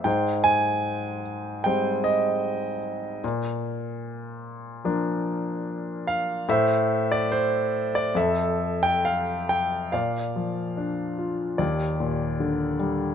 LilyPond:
<<
  \new Staff \with { instrumentName = "Grand piano" } { \time 4/4 \key bes \lydian \tempo 4 = 74 << { g''8 aes''4 r8 g''8 ees''4 r8 | r2. r8 f''8 | e''8. d''16 c''8. d''16 e''8. g''16 f''8 g''8 | \key bes \major f''2 d''4. r8 | } \\ { c''2 c''2 | r1 | c''2 a'2 | d''2 g'2 | } >> }
  \new Staff \with { instrumentName = "Grand piano" } { \clef bass \time 4/4 \key bes \lydian aes,2 <g aes c'>2 | bes,2 <f bes d'>2 | a,2 f,2 | \key bes \major bes,8 f8 d'8 f'8 ees,8 bes,8 d8 g8 | }
>>